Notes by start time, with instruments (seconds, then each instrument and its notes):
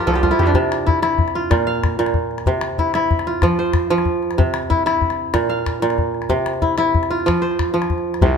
Already playing: kora G4 A#4 C5 D5 F5 G5
0.00 kora F4
0.07 fm bass C2, kora F3 A4
0.14 kora G4, calabash click
0.23 kora F4, calabash thump, calabash click
0.31 kora E4
0.39 fm bass F2, kora G4
0.46 kora D4, calabash click
0.54 kora C3, calabash thump
0.72 calabash click
0.86 kora E4, calabash thump
1.02 kora E4, calabash click
1.18 calabash thump, calabash click
1.28 calabash click
1.35 kora F4
1.51 kora A#2, calabash thump, calabash click
1.67 kora F5
1.75 calabash click
1.84 calabash thump, calabash click
1.99 kora A#2, calabash click
2.06 calabash click
2.14 calabash thump, calabash click
2.31 calabash click
2.38 calabash click
2.46 kora C3, calabash thump
2.61 calabash click
2.78 kora E4, calabash thump
2.94 kora E4, calabash click
3.11 calabash thump, calabash click
3.19 calabash click
3.27 kora F4
3.42 kora F3, calabash thump, calabash click
3.59 kora C5
3.66 calabash click
3.73 calabash thump, calabash click
3.90 kora F3, calabash click
3.98 calabash click
4.05 calabash thump, calabash click
4.23 calabash click
4.31 calabash click
4.38 kora C3, calabash thump
4.54 calabash click
4.70 kora E4, calabash thump
4.86 kora E4, calabash click
5.01 calabash thump, calabash click
5.10 calabash click
5.34 kora A#2, calabash thump, calabash click
5.49 kora F5
5.59 calabash click
5.66 calabash thump, calabash click
5.82 kora A#2, calabash click
5.90 calabash click
5.98 calabash thump, calabash click
6.14 calabash click
6.22 calabash click
6.29 kora C3, calabash thump
6.46 calabash click
6.53 calabash click
6.62 kora E4, calabash thump, calabash click
6.78 kora E4, calabash click
6.94 calabash thump
7.03 calabash click
7.10 kora F4, calabash click
7.20 calabash click
7.26 kora F3, calabash thump, calabash click
7.42 kora C5, calabash click
7.51 calabash click
7.59 calabash thump, calabash click
7.74 kora F3
7.82 calabash click
7.90 calabash thump, calabash click
7.98 calabash click
8.14 calabash click
8.21 fm bass C2, kora C3, calabash thump